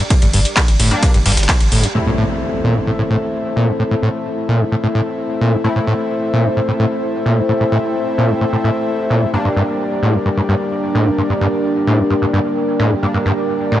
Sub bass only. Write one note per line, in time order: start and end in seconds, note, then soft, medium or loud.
0.22 0.33 G1 medium
0.34 0.45 G1 loud
0.68 0.79 G1 medium
0.80 0.91 G1 loud
1.14 1.25 G1 medium
1.26 1.37 G1 loud
1.37 1.49 G1 medium
1.61 1.71 G1 medium
1.72 1.83 G1 loud